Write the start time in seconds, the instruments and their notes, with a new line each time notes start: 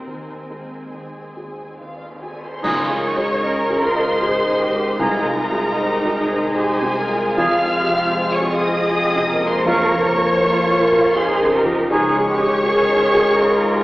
Already playing: cello section D#2, viola section C4, harp D#4 G4 C5, violin section A#4
0.07 felt piano D#2, harp D#3, violin section G#5
0.50 felt piano G#3
0.94 felt piano D#3, harp D#4, violin section G#4
1.37 felt piano G#4
1.80 felt piano D#3, harp D#4, violin section F4 F5
2.22 violin section G#4 G#5, felt piano G#4
2.44 violin section C5 C6
2.63 double bass section C#2, felt piano C#2, harp C#3, french horn section D#3 G#3, clarinet D#4, viola section F4 A#4, oboe G#4, violin section C#5 C#6, flute G#5, concert bass drum, crash
2.84 harp C#4
2.90 felt piano G#3
3.03 harp G#3, viola section D#4
3.17 felt piano G#4
3.43 viola section C#4, cello section A#4, felt piano D#5, harp D#5
3.70 felt piano G#4
3.83 viola section F4, violin section C5 C6
3.96 felt piano D#5
4.03 harp D#6
4.21 viola section D#4, cello section G#4, felt piano G#4
4.48 felt piano G#2
4.61 cello section G4, harp D#5
4.74 felt piano G#3
4.81 harp G#3
4.99 felt piano C2, double bass section C2, timpani C3, harp C3, viola section D#4 G#4, clarinet D#4, cello section F4, oboe G#4, violin section A#4 A#5, flute G#5
5.20 harp C4
5.25 felt piano G#3
5.38 harp G#3, viola section D#4
5.52 felt piano G#4
5.77 cello section D#4, viola section G4, harp C5, felt piano C5
6.05 felt piano G#4
6.17 viola section G#4
6.30 felt piano C5
6.37 harp C6
6.54 felt piano G#3, cello section G4, violin section G#4 G#5, viola section C5
6.76 harp G#4
6.82 felt piano C3
6.96 cello section F4, viola section A#4, harp C5
7.10 felt piano G#3
7.18 harp G#3
7.37 felt piano F2, double bass section F2, harp F2, french horn section F3 G#3, viola section C4 G#4, clarinet F4, oboe G#4, flute F5, violin section F5 F6
7.58 harp C3
7.65 felt piano G#3
7.77 harp G#3, viola section G4
7.91 felt piano F4
7.97 harp F4
8.16 viola section G#4, felt piano C5, harp C5
8.34 harp G#4, violin section C#5 C#6
8.41 felt piano G#4
8.52 violin section D#5 D#6, harp F5
8.67 felt piano C5
8.73 harp C6
8.91 viola section C4, felt piano F4, cello section G#4, harp F5
9.11 harp G#4
9.16 felt piano C3
9.28 viola section A#3, cello section A#4, harp C5
9.40 felt piano G#3
9.47 harp G#3, violin section C5 C6
9.65 felt piano F2, timpani F2, harp F2, clarinet F4, viola section A#4, oboe A#4, french horn section A#4, violin section C#5 C#6, flute F5
9.86 harp C#3
9.91 felt piano F3
10.05 harp F3
10.16 felt piano F4
10.24 harp F4
10.41 viola section A#3, cello section F4, felt piano A#4, harp A#4
10.66 felt piano F4
10.80 harp F5
10.92 felt piano A#4
10.98 harp A#5
11.15 viola section D#4 A#4, felt piano F4, cello section G#4, violin section C5 C6, harp F5
11.36 harp F4
11.42 felt piano C#3
11.54 viola section G4, cello section A#4, harp A#4
11.66 felt piano F3
11.73 harp F3
11.91 felt piano C#2, double bass section C#2, harp C#3, french horn section D#3 G#3, viola section G#3 C#4, clarinet D#4, cello section G#4, oboe G#4, violin section C#5 C#6, flute G#5
12.10 harp C#4
12.15 felt piano G#3
12.28 harp G#3, cello section G4
12.39 felt piano D#4
12.48 harp D#4
12.64 viola section C#4 A#4, felt piano G#4, cello section G#4
12.85 harp D#4, felt piano D#4
13.03 harp D#5
13.14 felt piano G#4
13.39 felt piano D#4, viola section F4 G#4, cello section A#4, harp D#5
13.63 felt piano G#2
13.76 harp D#4, viola section G4